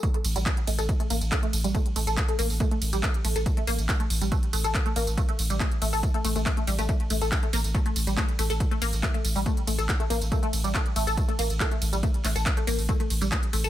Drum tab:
RD |--x---x---x---x-|--x---x---x---x-|--x---x---x---x-|--x---x---x---x-|
HH |xxoxxxoxxxoxxxox|xxoxxxooxxoxxxox|xxoxxxoxxxoxxxox|xxoxxxooxxoxxxox|
TB |x-xx--xxx-xxx-xx|x-xxx-xxx-xxx-xx|x-xxx-xxx-xxx-xx|x-xxx-xxx-xxx-xx|
CP |----x-------x---|----x-------x---|----x-------x---|----x-------x---|
BD |o---o---o---o---|o---o---o---o---|o---o---o---o---|o---o---o---o---|

RD |--x---x---x---x-|--x---x---x---x-|--x---x---x---x-|--x---x---x---x-|
HH |xxoxxxoxxxoxxxox|xxoxxxooxxoxxxox|xxoxxxoxxxoxxxox|xxoxxxooxxoxxxox|
TB |x-xxx-xxx-xx--xx|x-xx--xxx-xxx-xx|x-xx--xxx-xxx-xx|x-xx--xxx-xxx-xx|
CP |----x-------x---|----x-------x---|----x-------x---|--x-x-------x---|
BD |o---o---o---o---|o---o---o---o---|o---o---o---o---|o---o---o---o---|